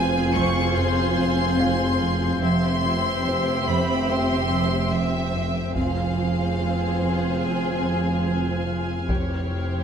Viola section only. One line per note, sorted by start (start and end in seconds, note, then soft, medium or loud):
0.00 2.39 C4 medium
0.00 2.39 F4 medium
2.43 5.72 C4 medium
2.43 5.72 E5 medium
5.76 9.06 C4 soft
5.76 9.05 F4 soft
9.09 9.84 C3 soft
9.09 9.84 E4 soft